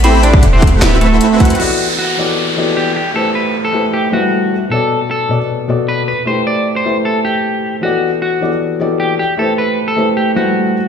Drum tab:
CC |--------------------------------|x-------------------------------|--------------------------------|--------------------------------|
HH |x---x---x---xx--x---x---x---xxxx|--------------------------------|--------------------------------|--------------------------------|
SD |----------------o---------------|--------------------------------|--------------------------------|--------------------------------|
BD |------o-----o---------------o---|--------------------------------|--------------------------------|--------------------------------|

CC |--------------------------------|--------------------------------|--------------------------------|
HH |--------------------------------|--------------------------------|--------------------------------|
SD |--------------------------------|--------------------------------|--------------------------------|
BD |--------------------------------|--------------------------------|--------------------------------|